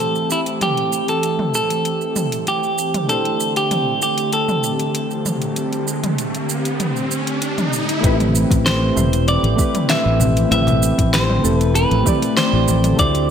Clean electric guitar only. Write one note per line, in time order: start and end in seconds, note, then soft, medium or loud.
0.00 0.31 A4 medium
0.32 0.40 E4 medium
0.63 1.09 G4 medium
1.09 1.54 A4 medium
1.55 2.48 A4 medium
2.48 3.09 G4 medium
3.09 3.57 A4 medium
3.57 4.01 G4 medium
4.03 4.33 G4 medium
4.33 7.38 A4 medium
8.66 9.28 C5 medium
9.28 9.89 D5 loud
9.90 10.51 E5 loud
10.52 11.13 E5 loud
11.14 11.59 C5 medium
11.59 11.75 B4 medium
11.75 12.37 B4 medium
12.37 12.99 C5 medium
12.99 13.30 D5 loud